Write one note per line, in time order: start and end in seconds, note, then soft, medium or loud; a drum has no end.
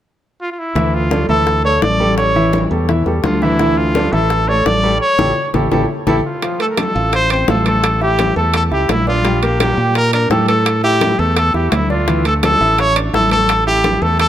0.41 0.51 F4 medium
0.52 0.61 F4 medium
0.59 0.96 E4 medium
0.75 1.25 D2 medium
0.75 1.05 E3 medium
0.75 1.05 E4 medium
0.75 1.05 E5 medium
0.75 high bongo medium
0.75 high conga soft
0.94 1.29 F4 medium
0.94 high conga soft
1.11 1.26 A3 medium
1.11 1.26 A4 medium
1.11 1.26 D5 medium
1.11 high bongo medium
1.11 high conga medium
1.29 1.78 D2 medium
1.29 1.58 E3 medium
1.29 1.58 E4 medium
1.29 1.62 A4 medium
1.29 1.59 E5 medium
1.29 high conga soft
1.47 high bongo medium
1.47 high conga soft
1.64 1.94 A3 medium
1.64 1.94 A4 medium
1.64 1.84 C#5 loud
1.64 1.94 D5 medium
1.64 high conga soft
1.82 2.65 A1 medium
1.82 2.17 D5 loud
1.82 high bongo medium
1.82 low bongo medium
1.82 high conga medium
2.00 2.29 G3 medium
2.00 2.29 G4 medium
2.00 2.29 A4 medium
2.00 high conga medium
2.17 2.67 C#5 medium
2.17 high bongo medium
2.17 high conga soft
2.35 2.65 E3 medium
2.35 2.65 E4 medium
2.35 2.65 E5 medium
2.35 high bongo soft
2.35 high conga soft
2.53 high bongo medium
2.53 high conga medium
2.71 3.04 E2 medium
2.71 2.85 G3 medium
2.71 2.86 G4 medium
2.71 2.86 A4 medium
2.71 high conga soft
2.89 3.03 E3 medium
2.89 3.03 E4 medium
2.89 3.04 E5 medium
2.89 high bongo medium
2.89 high conga soft
3.06 3.23 E2 medium
3.06 3.35 G3 medium
3.06 3.35 G4 medium
3.06 3.36 A4 medium
3.06 high bongo soft
3.06 high conga soft
3.24 4.07 D2 medium
3.24 3.44 F4 medium
3.24 high bongo medium
3.24 low bongo medium
3.24 high conga medium
3.42 3.56 E3 medium
3.42 3.79 E4 medium
3.42 3.57 E4 medium
3.42 3.57 E5 medium
3.42 high bongo soft
3.59 3.89 E3 medium
3.59 3.89 E4 medium
3.59 3.89 E5 medium
3.59 high bongo medium
3.59 high conga soft
3.77 4.14 F4 medium
3.77 high conga soft
3.95 4.10 A3 medium
3.95 4.10 A4 medium
3.95 4.10 D5 medium
3.95 high bongo medium
3.95 high conga medium
4.13 4.62 A1 loud
4.13 4.42 E3 medium
4.13 4.42 E4 medium
4.13 4.50 A4 medium
4.13 4.42 E5 medium
4.13 high conga soft
4.30 high bongo medium
4.30 high conga soft
4.48 4.77 A3 medium
4.48 4.77 A4 medium
4.48 4.68 C#5 medium
4.48 4.77 D5 medium
4.48 high conga soft
4.65 4.98 A1 medium
4.65 5.01 D5 loud
4.65 high bongo medium
4.65 low bongo medium
4.65 high conga medium
4.83 4.98 G3 medium
4.83 4.98 G4 medium
4.83 4.98 A4 medium
5.01 5.50 C#5 loud
5.19 5.32 A1 loud
5.19 5.30 E4 medium
5.19 5.30 G4 medium
5.19 5.30 A4 medium
5.19 low bongo loud
5.19 low conga medium
5.54 5.67 A1 loud
5.54 5.65 E4 medium
5.54 5.65 G4 medium
5.54 5.65 A4 medium
5.54 low bongo medium
5.54 low conga medium
5.71 5.85 A1 medium
5.71 5.83 E4 medium
5.71 5.83 G4 medium
5.71 5.83 A4 medium
5.71 low bongo medium
5.71 low conga loud
6.07 6.20 A1 medium
6.07 6.18 E4 loud
6.07 6.16 E4 medium
6.07 6.19 G4 medium
6.07 6.18 A4 loud
6.07 low bongo loud
6.07 low conga medium
6.26 6.58 F4 medium
6.42 6.57 F3 medium
6.42 6.57 F4 medium
6.42 high bongo medium
6.42 high conga soft
6.42 high timbale medium
6.60 6.89 A3 medium
6.60 6.89 A4 medium
6.60 6.66 A4 medium
6.60 high conga soft
6.60 high timbale medium
6.71 6.81 A#4 medium
6.77 7.14 A4 medium
6.77 high bongo medium
6.77 high conga medium
6.77 high timbale medium
6.95 7.45 A1 loud
6.95 7.24 F4 medium
6.95 7.24 F5 medium
6.95 high conga soft
7.13 7.30 C5 loud
7.13 high bongo medium
7.13 high conga soft
7.13 high timbale medium
7.30 7.45 C4 medium
7.30 7.45 C5 medium
7.30 7.48 C5 medium
7.30 high conga soft
7.30 high timbale medium
7.48 8.31 A1 medium
7.48 7.63 F4 medium
7.48 7.65 A4 medium
7.48 7.63 F5 medium
7.48 high bongo medium
7.48 low bongo medium
7.48 high conga medium
7.48 low timbale medium
7.65 7.95 A3 medium
7.65 7.95 A4 medium
7.65 8.00 A4 medium
7.65 high conga medium
7.65 high timbale medium
7.84 high bongo medium
7.84 high conga soft
7.84 high timbale medium
8.01 8.30 E4 medium
8.01 8.35 G4 loud
8.01 8.30 E5 medium
8.01 high bongo soft
8.01 high conga soft
8.19 high bongo medium
8.19 high conga medium
8.19 high timbale medium
8.36 8.69 E2 medium
8.36 8.65 A3 medium
8.36 8.65 A4 medium
8.36 8.54 A4 medium
8.36 high conga soft
8.54 8.64 A4 medium
8.54 high bongo medium
8.54 high conga soft
8.54 high timbale medium
8.71 8.88 C#2 medium
8.71 9.01 E4 medium
8.71 8.89 G4 medium
8.71 9.01 E5 medium
8.71 high bongo soft
8.71 high conga soft
8.89 9.72 A#1 medium
8.89 9.07 E4 medium
8.89 high bongo medium
8.89 low bongo medium
8.89 high conga medium
8.89 high timbale medium
8.89 low timbale medium
9.07 9.22 D4 medium
9.07 9.45 F4 medium
9.07 9.22 D5 medium
9.07 high bongo soft
9.07 high conga medium
9.25 9.39 G3 medium
9.25 9.39 G4 medium
9.25 high bongo medium
9.25 high conga soft
9.25 high timbale medium
9.42 9.71 A#3 medium
9.42 9.61 G4 medium
9.42 9.72 A#4 medium
9.42 high conga soft
9.42 high timbale medium
9.60 9.93 G4 medium
9.60 high bongo medium
9.60 high conga medium
9.60 high timbale medium
9.77 10.27 A#2 medium
9.77 10.07 G4 medium
9.77 10.07 G5 medium
9.77 high conga soft
9.95 10.12 A#4 loud
9.95 high bongo medium
9.95 high conga soft
9.95 high timbale medium
10.13 10.28 D4 medium
10.13 10.30 A#4 medium
10.13 10.28 D5 medium
10.13 high conga soft
10.13 high timbale medium
10.30 11.13 A2 medium
10.30 10.45 G4 medium
10.30 10.47 A4 medium
10.30 10.45 G5 medium
10.30 high bongo medium
10.30 low bongo medium
10.30 high conga medium
10.48 10.78 A3 medium
10.48 10.81 A4 medium
10.48 10.78 A4 medium
10.48 high timbale medium
10.66 high bongo medium
10.66 high timbale medium
10.84 11.13 E4 medium
10.84 11.21 G4 loud
10.84 11.13 E5 medium
10.84 high bongo soft
10.84 high conga soft
11.01 high bongo medium
11.01 high conga medium
11.01 high timbale medium
11.19 11.52 E2 loud
11.19 11.48 A3 medium
11.19 11.37 A4 medium
11.19 11.48 A4 medium
11.19 high conga soft
11.36 11.54 A4 loud
11.36 high bongo medium
11.36 high conga soft
11.36 high timbale medium
11.54 11.71 E2 medium
11.54 11.83 E4 medium
11.54 11.74 G4 medium
11.54 11.84 E5 medium
11.54 high bongo soft
11.54 high conga soft
11.72 12.55 D2 medium
11.72 11.90 E4 medium
11.72 high bongo medium
11.72 low bongo medium
11.72 high conga medium
11.72 high timbale medium
11.72 low timbale medium
11.90 12.04 D4 medium
11.90 12.23 F4 medium
11.90 12.04 D5 medium
11.90 high bongo soft
11.90 high conga medium
12.07 12.22 E3 medium
12.07 12.22 E4 medium
12.07 high bongo medium
12.07 high conga soft
12.07 high timbale medium
12.25 12.54 A3 medium
12.25 12.54 A4 medium
12.25 12.35 A4 medium
12.25 high conga soft
12.25 high timbale medium
12.43 12.81 A4 loud
12.43 high bongo medium
12.43 high conga medium
12.43 high timbale medium
12.60 13.10 A1 medium
12.60 12.89 E4 medium
12.60 12.90 E5 medium
12.60 high conga soft
12.78 12.97 C#5 loud
12.78 high bongo medium
12.78 high conga soft
12.78 high timbale medium
12.96 13.10 D4 medium
12.96 13.10 D5 medium
12.96 high conga soft
12.96 high timbale medium
13.13 13.96 A1 medium
13.13 13.28 E4 medium
13.13 13.31 A4 loud
13.13 13.28 E5 medium
13.13 high bongo medium
13.13 low bongo medium
13.13 high conga medium
13.31 13.60 A3 medium
13.31 13.60 A4 medium
13.31 13.64 A4 loud
13.31 high conga medium
13.31 high timbale medium
13.49 high bongo medium
13.49 high conga soft
13.49 high timbale medium
13.67 13.96 E4 medium
13.67 14.04 G4 loud
13.67 13.96 E5 medium
13.67 high bongo soft
13.67 high conga soft
13.84 high bongo medium
13.84 high conga medium
13.84 high timbale medium
14.02 14.28 E2 medium
14.02 14.28 A3 medium
14.02 14.28 A4 medium
14.02 14.19 A4 medium
14.02 high conga soft
14.19 14.28 A4 loud
14.19 high bongo medium
14.19 high conga soft
14.19 high timbale medium